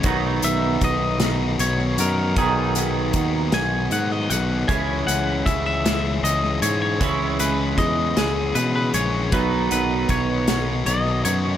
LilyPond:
<<
  \new Staff \with { instrumentName = "Clean electric guitar" } { \time 6/8 \key b \major \tempo 4. = 52 cis''8 e''8 dis''4 cis''8 ais'8 | gis'4. gis''8 fis''16 dis''16 fis''8 | gis''8 fis''8 e''16 e''8. dis''8 cis''16 cis''16~ | cis''8 b'8 dis''8 gis'8 b'16 b'16 cis''8 |
b'8 b'8 cis''4 dis''8 cis''8 | }
  \new Staff \with { instrumentName = "Distorted electric guitar" } { \time 6/8 \key b \major <dis b dis' fis'>8 <dis b dis' fis'>8 <dis b dis' fis'>8 <dis b dis' fis'>8 <dis b dis' fis'>8 <dis b dis' fis'>8 | <dis b dis' fis'>8 <dis b dis' fis'>8 <dis b dis' fis'>8 <dis b dis' fis'>8 <dis b dis' fis'>8 <dis b dis' fis'>8 | <e gis cis' gis'>8 <e gis cis' gis'>8 <e gis cis' gis'>8 <e gis cis' gis'>8 <e gis cis' gis'>8 <e gis cis' gis'>8 | <e gis cis' gis'>8 <e gis cis' gis'>8 <e gis cis' gis'>8 <e gis cis' gis'>8 <e gis cis' gis'>8 <e gis cis' gis'>8 |
<fis b dis' fis'>8 <fis b dis' fis'>8 <fis b dis' fis'>8 <fis b dis' fis'>8 <fis b dis' fis'>8 <fis b dis' fis'>8 | }
  \new Staff \with { instrumentName = "Overdriven electric guitar" } { \clef bass \time 6/8 \key b \major <b, dis fis b dis'>2. | <b, dis fis b dis'>2. | <cis gis cis' e'>2. | <cis gis cis' e'>2. |
<b, dis fis b dis'>2. | }
  \new Staff \with { instrumentName = "Fingered electric bass" } { \clef bass \time 6/8 \key b \major b,,8 b,,8 b,,4 b,,8 fis,8 | b,,4 dis,8 b,,8 gis,8 b,,8 | cis,8 cis,8 cis,4 cis,8 gis,8 | cis,4 e,8 cis,8 b,8 ais,,8 |
b,,8 b,,8 b,,4 b,,8 fis,8 | }
  \new DrumStaff \with { instrumentName = "Drums" } \drummode { \time 6/8 <hh bd>8 hh8 <hh bd>8 <hh sn>8 hh8 hh8 | <hh bd>8 hh8 <hh bd>8 <hh sn>8 hh8 hh8 | <hh bd>8 hh8 <hh bd>8 <hh sn>8 hh8 hh8 | <hh bd>8 hh8 <hh bd>8 <hh sn>8 hh8 hh8 |
<hh bd>8 hh8 <hh bd>8 <hh sn>8 hh8 hh8 | }
>>